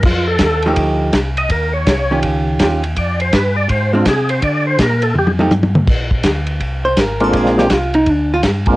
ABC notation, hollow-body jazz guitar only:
X:1
M:4/4
L:1/8
Q:"Swing" 1/4=164
K:Bbmix
V:1 name="Hollow-body jazz guitar"
z3 [F,=A,EG]3 z2 | z3 [E,_DFG]3 [E,DFG] z | z4 z [A,CD] z2 | z4 z [F,=A,EG] z2 |
z4 z c B =A | A G F E D F z2 |]